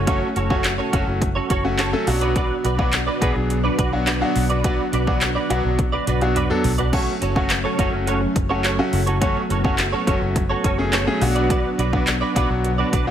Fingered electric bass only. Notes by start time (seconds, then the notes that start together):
Already playing: F#1
0.36 F#1
0.93 F#1
1.07 F#1
1.50 F#1
2.07 B1
2.64 B1
3.22 B1
3.36 B1
3.79 B1
4.36 B1
4.93 B1
5.50 B1
5.64 B1
6.07 B1
6.64 B1
7.22 F#1
7.79 F#1
7.93 F#1
8.36 F#1
8.93 F#1
9.50 F#1
10.07 F#1
10.21 F#1
10.64 F#1
11.21 B1
11.79 B1
12.36 B1
12.50 B1
12.93 B1